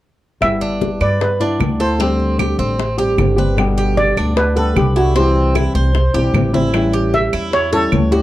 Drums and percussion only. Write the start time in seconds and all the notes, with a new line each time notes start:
0.42 high bongo, high conga, claves
0.62 high conga
0.81 high bongo, high conga
1.01 high bongo, high conga, claves
1.21 high bongo, high conga
1.41 high bongo, high conga
1.60 high bongo, low bongo, high conga, claves
1.80 high bongo, high conga
2.00 high bongo, high conga
2.20 high conga
2.39 high bongo, high conga, claves
2.59 high bongo, high conga
2.79 high bongo, high conga
2.99 high bongo, high conga
3.18 high bongo, low bongo, high conga, claves
3.38 high bongo, high conga
3.58 high bongo, high conga, claves
3.77 high conga
3.97 high bongo, high conga
4.17 high bongo, high conga, claves
4.37 high bongo, high conga
4.56 high bongo, high conga
4.76 high bongo, low bongo, high conga, claves
4.96 high bongo, high conga
5.16 high bongo, high conga
5.36 high conga
5.55 high bongo, high conga, claves
5.75 high bongo, high conga
5.95 high bongo, high conga
6.15 high bongo, high conga
6.35 high bongo, low bongo, high conga, claves
6.54 high bongo, high conga
6.74 high bongo, high conga, claves
6.94 high conga
7.14 high bongo, high conga
7.33 high bongo, high conga, claves
7.53 high bongo, high conga
7.73 high bongo, high conga
7.92 high bongo, low bongo, high conga, claves
8.12 high conga